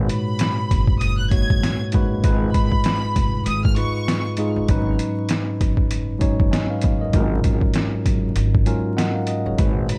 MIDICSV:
0, 0, Header, 1, 6, 480
1, 0, Start_track
1, 0, Tempo, 612245
1, 1754, Time_signature, 4, 2, 24, 8
1, 7827, End_track
2, 0, Start_track
2, 0, Title_t, "Violin section"
2, 0, Program_c, 0, 48
2, 82, Note_on_c, 0, 83, 82
2, 767, Note_off_c, 0, 83, 0
2, 784, Note_on_c, 0, 87, 89
2, 917, Note_off_c, 0, 87, 0
2, 933, Note_on_c, 0, 90, 84
2, 1022, Note_off_c, 0, 90, 0
2, 1037, Note_on_c, 0, 92, 86
2, 1395, Note_off_c, 0, 92, 0
2, 1986, Note_on_c, 0, 83, 92
2, 2679, Note_off_c, 0, 83, 0
2, 2720, Note_on_c, 0, 87, 87
2, 2845, Note_off_c, 0, 87, 0
2, 2861, Note_on_c, 0, 89, 89
2, 2947, Note_off_c, 0, 89, 0
2, 2961, Note_on_c, 0, 85, 90
2, 3317, Note_off_c, 0, 85, 0
2, 7762, Note_on_c, 0, 83, 88
2, 7827, Note_off_c, 0, 83, 0
2, 7827, End_track
3, 0, Start_track
3, 0, Title_t, "Tine electric piano"
3, 0, Program_c, 1, 4
3, 0, Control_c, 1, 64, 127
3, 0, Note_on_c, 1, 44, 94
3, 0, Note_on_c, 1, 46, 81
3, 0, Note_on_c, 1, 56, 78
3, 0, Note_on_c, 1, 66, 78
3, 0, Note_on_c, 1, 68, 58
3, 0, Note_on_c, 1, 71, 94
3, 0, Note_on_c, 1, 73, 72
3, 500, Note_off_c, 1, 44, 0
3, 502, Note_off_c, 1, 56, 0
3, 504, Note_off_c, 1, 46, 0
3, 507, Note_off_c, 1, 66, 0
3, 509, Note_off_c, 1, 71, 0
3, 1020, Note_on_c, 1, 44, 73
3, 1024, Note_on_c, 1, 56, 69
3, 1028, Note_on_c, 1, 58, 71
3, 1032, Note_on_c, 1, 66, 65
3, 1037, Note_off_c, 1, 73, 0
3, 1037, Note_on_c, 1, 73, 84
3, 1373, Note_off_c, 1, 44, 0
3, 1375, Note_off_c, 1, 56, 0
3, 1377, Note_off_c, 1, 58, 0
3, 1380, Note_off_c, 1, 66, 0
3, 1382, Note_off_c, 1, 73, 0
3, 1508, Note_on_c, 1, 44, 87
3, 1512, Note_on_c, 1, 56, 74
3, 1517, Note_on_c, 1, 58, 76
3, 1521, Note_on_c, 1, 66, 80
3, 1526, Note_on_c, 1, 71, 99
3, 1690, Note_off_c, 1, 44, 0
3, 1692, Note_off_c, 1, 56, 0
3, 1694, Note_off_c, 1, 58, 0
3, 1697, Note_off_c, 1, 66, 0
3, 1699, Note_off_c, 1, 71, 0
3, 1745, Note_on_c, 1, 44, 92
3, 1749, Note_on_c, 1, 56, 81
3, 1754, Note_on_c, 1, 63, 89
3, 1758, Note_on_c, 1, 65, 79
3, 1762, Note_on_c, 1, 71, 102
3, 1766, Control_c, 1, 64, 0
3, 1769, Note_off_c, 1, 68, 0
3, 1906, Control_c, 1, 64, 127
3, 2420, Note_off_c, 1, 44, 0
3, 2422, Note_off_c, 1, 56, 0
3, 2425, Note_off_c, 1, 63, 0
3, 2426, Note_off_c, 1, 65, 0
3, 2429, Note_off_c, 1, 71, 0
3, 2946, Note_on_c, 1, 44, 77
3, 2950, Note_on_c, 1, 56, 72
3, 2954, Note_on_c, 1, 63, 69
3, 2958, Note_on_c, 1, 65, 69
3, 2962, Note_on_c, 1, 71, 82
3, 3296, Note_off_c, 1, 44, 0
3, 3298, Note_off_c, 1, 56, 0
3, 3300, Note_off_c, 1, 63, 0
3, 3303, Note_off_c, 1, 65, 0
3, 3305, Note_off_c, 1, 71, 0
3, 3429, Note_on_c, 1, 44, 95
3, 3434, Note_on_c, 1, 56, 83
3, 3438, Note_on_c, 1, 63, 83
3, 3442, Note_on_c, 1, 65, 89
3, 3447, Note_on_c, 1, 68, 98
3, 3611, Note_off_c, 1, 44, 0
3, 3613, Note_off_c, 1, 56, 0
3, 3615, Note_off_c, 1, 63, 0
3, 3617, Note_off_c, 1, 65, 0
3, 3619, Note_off_c, 1, 68, 0
3, 3672, Note_on_c, 1, 44, 92
3, 3676, Note_on_c, 1, 54, 87
3, 3680, Note_on_c, 1, 61, 84
3, 3685, Control_c, 1, 64, 0
3, 3685, Note_on_c, 1, 63, 91
3, 3689, Note_on_c, 1, 71, 104
3, 3821, Control_c, 1, 64, 127
3, 4344, Note_off_c, 1, 44, 0
3, 4346, Note_off_c, 1, 54, 0
3, 4348, Note_off_c, 1, 61, 0
3, 4350, Note_off_c, 1, 63, 0
3, 4352, Note_off_c, 1, 71, 0
3, 4854, Note_on_c, 1, 44, 95
3, 4858, Note_on_c, 1, 54, 89
3, 4863, Note_on_c, 1, 61, 86
3, 4867, Note_on_c, 1, 63, 83
3, 4871, Note_on_c, 1, 73, 102
3, 5107, Note_on_c, 1, 80, 74
3, 5112, Note_on_c, 1, 75, 62
3, 5113, Note_off_c, 1, 73, 0
3, 5210, Note_off_c, 1, 44, 0
3, 5212, Note_off_c, 1, 54, 0
3, 5215, Note_off_c, 1, 61, 0
3, 5217, Note_off_c, 1, 63, 0
3, 5246, Note_off_c, 1, 80, 0
3, 5248, Note_off_c, 1, 75, 0
3, 5255, Note_on_c, 1, 77, 75
3, 5260, Note_on_c, 1, 71, 62
3, 5484, Note_off_c, 1, 77, 0
3, 5486, Note_off_c, 1, 71, 0
3, 5497, Note_on_c, 1, 75, 75
3, 5501, Note_on_c, 1, 70, 58
3, 5593, Note_on_c, 1, 44, 99
3, 5597, Note_on_c, 1, 54, 81
3, 5601, Note_off_c, 1, 70, 0
3, 5602, Note_on_c, 1, 61, 84
3, 5605, Control_c, 1, 64, 0
3, 5606, Note_on_c, 1, 65, 75
3, 5610, Note_on_c, 1, 70, 102
3, 5725, Note_off_c, 1, 75, 0
3, 5754, Control_c, 1, 64, 127
3, 6264, Note_off_c, 1, 44, 0
3, 6266, Note_off_c, 1, 54, 0
3, 6269, Note_off_c, 1, 61, 0
3, 6271, Note_off_c, 1, 65, 0
3, 6273, Note_off_c, 1, 70, 0
3, 6785, Note_on_c, 1, 44, 88
3, 6789, Note_on_c, 1, 54, 84
3, 6794, Note_on_c, 1, 61, 84
3, 6794, Note_on_c, 1, 80, 70
3, 6798, Note_on_c, 1, 65, 81
3, 6802, Note_on_c, 1, 70, 101
3, 7017, Note_off_c, 1, 80, 0
3, 7026, Note_off_c, 1, 70, 0
3, 7030, Note_on_c, 1, 78, 85
3, 7031, Note_on_c, 1, 75, 70
3, 7035, Note_on_c, 1, 70, 59
3, 7136, Note_off_c, 1, 44, 0
3, 7138, Note_off_c, 1, 54, 0
3, 7140, Note_off_c, 1, 61, 0
3, 7142, Note_off_c, 1, 65, 0
3, 7164, Note_off_c, 1, 70, 0
3, 7165, Note_off_c, 1, 78, 0
3, 7168, Note_off_c, 1, 75, 0
3, 7169, Note_on_c, 1, 77, 75
3, 7174, Note_on_c, 1, 70, 69
3, 7275, Note_on_c, 1, 75, 77
3, 7400, Note_off_c, 1, 77, 0
3, 7403, Note_off_c, 1, 70, 0
3, 7415, Note_on_c, 1, 73, 72
3, 7419, Note_on_c, 1, 68, 58
3, 7498, Note_off_c, 1, 75, 0
3, 7505, Note_on_c, 1, 44, 94
3, 7509, Note_on_c, 1, 56, 80
3, 7513, Note_on_c, 1, 46, 81
3, 7518, Note_on_c, 1, 66, 75
3, 7522, Note_on_c, 1, 71, 93
3, 7525, Control_c, 1, 64, 0
3, 7639, Control_c, 1, 64, 127
3, 7643, Note_off_c, 1, 73, 0
3, 7646, Note_off_c, 1, 68, 0
3, 7827, Note_off_c, 1, 44, 0
3, 7827, Note_off_c, 1, 46, 0
3, 7827, Note_off_c, 1, 56, 0
3, 7827, Note_off_c, 1, 66, 0
3, 7827, Note_off_c, 1, 71, 0
3, 7827, End_track
4, 0, Start_track
4, 0, Title_t, "Upright bass"
4, 0, Program_c, 2, 32
4, 557, Note_on_c, 2, 30, 96
4, 1147, Note_off_c, 2, 30, 0
4, 1177, Note_on_c, 2, 30, 91
4, 1264, Note_off_c, 2, 30, 0
4, 1523, Note_on_c, 2, 30, 89
4, 1733, Note_off_c, 2, 30, 0
4, 1756, Note_on_c, 2, 32, 99
4, 1969, Note_off_c, 2, 32, 0
4, 1995, Note_on_c, 2, 32, 97
4, 2122, Note_off_c, 2, 32, 0
4, 2477, Note_on_c, 2, 29, 100
4, 2690, Note_off_c, 2, 29, 0
4, 2715, Note_on_c, 2, 32, 98
4, 2929, Note_off_c, 2, 32, 0
4, 3576, Note_on_c, 2, 30, 89
4, 3663, Note_off_c, 2, 30, 0
4, 3675, Note_on_c, 2, 32, 112
4, 3889, Note_off_c, 2, 32, 0
4, 4396, Note_on_c, 2, 30, 86
4, 4986, Note_off_c, 2, 30, 0
4, 5016, Note_on_c, 2, 30, 86
4, 5103, Note_off_c, 2, 30, 0
4, 5362, Note_on_c, 2, 30, 93
4, 5573, Note_off_c, 2, 30, 0
4, 5594, Note_on_c, 2, 32, 115
4, 5809, Note_off_c, 2, 32, 0
4, 5834, Note_on_c, 2, 32, 96
4, 5961, Note_off_c, 2, 32, 0
4, 6316, Note_on_c, 2, 30, 94
4, 6530, Note_off_c, 2, 30, 0
4, 6554, Note_on_c, 2, 32, 99
4, 6768, Note_off_c, 2, 32, 0
4, 7416, Note_on_c, 2, 30, 93
4, 7503, Note_off_c, 2, 30, 0
4, 7516, Note_on_c, 2, 32, 104
4, 7730, Note_off_c, 2, 32, 0
4, 7827, End_track
5, 0, Start_track
5, 0, Title_t, "Muted upright bass strokes"
5, 2377, Note_on_c, 9, 29, 51
5, 2456, Note_off_c, 9, 29, 0
5, 6216, Note_on_c, 9, 29, 50
5, 6295, Note_off_c, 9, 29, 0
5, 7827, End_track
6, 0, Start_track
6, 0, Title_t, "Drums"
6, 73, Note_on_c, 9, 42, 80
6, 152, Note_off_c, 9, 42, 0
6, 305, Note_on_c, 9, 42, 109
6, 322, Note_on_c, 9, 38, 120
6, 384, Note_off_c, 9, 42, 0
6, 400, Note_off_c, 9, 38, 0
6, 557, Note_on_c, 9, 36, 94
6, 558, Note_on_c, 9, 42, 88
6, 635, Note_off_c, 9, 36, 0
6, 636, Note_off_c, 9, 42, 0
6, 686, Note_on_c, 9, 36, 98
6, 764, Note_off_c, 9, 36, 0
6, 792, Note_on_c, 9, 42, 106
6, 871, Note_off_c, 9, 42, 0
6, 1030, Note_on_c, 9, 42, 64
6, 1032, Note_on_c, 9, 36, 97
6, 1109, Note_off_c, 9, 42, 0
6, 1110, Note_off_c, 9, 36, 0
6, 1177, Note_on_c, 9, 36, 106
6, 1255, Note_off_c, 9, 36, 0
6, 1281, Note_on_c, 9, 38, 122
6, 1283, Note_on_c, 9, 42, 87
6, 1360, Note_off_c, 9, 38, 0
6, 1362, Note_off_c, 9, 42, 0
6, 1505, Note_on_c, 9, 42, 68
6, 1523, Note_on_c, 9, 36, 99
6, 1583, Note_off_c, 9, 42, 0
6, 1602, Note_off_c, 9, 36, 0
6, 1753, Note_on_c, 9, 42, 91
6, 1756, Note_on_c, 9, 36, 124
6, 1832, Note_off_c, 9, 42, 0
6, 1834, Note_off_c, 9, 36, 0
6, 1994, Note_on_c, 9, 42, 79
6, 1995, Note_on_c, 9, 36, 107
6, 2073, Note_off_c, 9, 36, 0
6, 2073, Note_off_c, 9, 42, 0
6, 2130, Note_on_c, 9, 36, 91
6, 2209, Note_off_c, 9, 36, 0
6, 2226, Note_on_c, 9, 42, 109
6, 2242, Note_on_c, 9, 38, 117
6, 2304, Note_off_c, 9, 42, 0
6, 2320, Note_off_c, 9, 38, 0
6, 2477, Note_on_c, 9, 36, 90
6, 2477, Note_on_c, 9, 42, 88
6, 2555, Note_off_c, 9, 36, 0
6, 2556, Note_off_c, 9, 42, 0
6, 2712, Note_on_c, 9, 42, 103
6, 2791, Note_off_c, 9, 42, 0
6, 2861, Note_on_c, 9, 36, 105
6, 2939, Note_off_c, 9, 36, 0
6, 2949, Note_on_c, 9, 42, 63
6, 3028, Note_off_c, 9, 42, 0
6, 3201, Note_on_c, 9, 38, 127
6, 3203, Note_on_c, 9, 42, 84
6, 3279, Note_off_c, 9, 38, 0
6, 3281, Note_off_c, 9, 42, 0
6, 3424, Note_on_c, 9, 42, 67
6, 3503, Note_off_c, 9, 42, 0
6, 3673, Note_on_c, 9, 42, 89
6, 3676, Note_on_c, 9, 36, 125
6, 3751, Note_off_c, 9, 42, 0
6, 3754, Note_off_c, 9, 36, 0
6, 3913, Note_on_c, 9, 42, 78
6, 3992, Note_off_c, 9, 42, 0
6, 4144, Note_on_c, 9, 42, 108
6, 4161, Note_on_c, 9, 38, 125
6, 4223, Note_off_c, 9, 42, 0
6, 4239, Note_off_c, 9, 38, 0
6, 4396, Note_on_c, 9, 36, 92
6, 4396, Note_on_c, 9, 42, 90
6, 4474, Note_off_c, 9, 42, 0
6, 4475, Note_off_c, 9, 36, 0
6, 4525, Note_on_c, 9, 36, 99
6, 4603, Note_off_c, 9, 36, 0
6, 4631, Note_on_c, 9, 42, 106
6, 4709, Note_off_c, 9, 42, 0
6, 4868, Note_on_c, 9, 42, 62
6, 4870, Note_on_c, 9, 36, 96
6, 4947, Note_off_c, 9, 42, 0
6, 4949, Note_off_c, 9, 36, 0
6, 5016, Note_on_c, 9, 36, 105
6, 5094, Note_off_c, 9, 36, 0
6, 5120, Note_on_c, 9, 38, 121
6, 5122, Note_on_c, 9, 42, 87
6, 5198, Note_off_c, 9, 38, 0
6, 5200, Note_off_c, 9, 42, 0
6, 5343, Note_on_c, 9, 42, 66
6, 5362, Note_on_c, 9, 36, 100
6, 5421, Note_off_c, 9, 42, 0
6, 5441, Note_off_c, 9, 36, 0
6, 5592, Note_on_c, 9, 42, 90
6, 5595, Note_on_c, 9, 36, 122
6, 5671, Note_off_c, 9, 42, 0
6, 5673, Note_off_c, 9, 36, 0
6, 5832, Note_on_c, 9, 42, 81
6, 5834, Note_on_c, 9, 36, 105
6, 5911, Note_off_c, 9, 42, 0
6, 5912, Note_off_c, 9, 36, 0
6, 5969, Note_on_c, 9, 36, 95
6, 6048, Note_off_c, 9, 36, 0
6, 6065, Note_on_c, 9, 42, 109
6, 6081, Note_on_c, 9, 38, 124
6, 6143, Note_off_c, 9, 42, 0
6, 6159, Note_off_c, 9, 38, 0
6, 6316, Note_on_c, 9, 36, 91
6, 6317, Note_on_c, 9, 42, 90
6, 6395, Note_off_c, 9, 36, 0
6, 6395, Note_off_c, 9, 42, 0
6, 6552, Note_on_c, 9, 42, 108
6, 6630, Note_off_c, 9, 42, 0
6, 6700, Note_on_c, 9, 36, 110
6, 6779, Note_off_c, 9, 36, 0
6, 6790, Note_on_c, 9, 42, 62
6, 6869, Note_off_c, 9, 42, 0
6, 7042, Note_on_c, 9, 38, 126
6, 7044, Note_on_c, 9, 42, 89
6, 7121, Note_off_c, 9, 38, 0
6, 7123, Note_off_c, 9, 42, 0
6, 7265, Note_on_c, 9, 42, 70
6, 7343, Note_off_c, 9, 42, 0
6, 7514, Note_on_c, 9, 42, 91
6, 7516, Note_on_c, 9, 36, 119
6, 7592, Note_off_c, 9, 42, 0
6, 7594, Note_off_c, 9, 36, 0
6, 7754, Note_on_c, 9, 42, 77
6, 7827, Note_off_c, 9, 42, 0
6, 7827, End_track
0, 0, End_of_file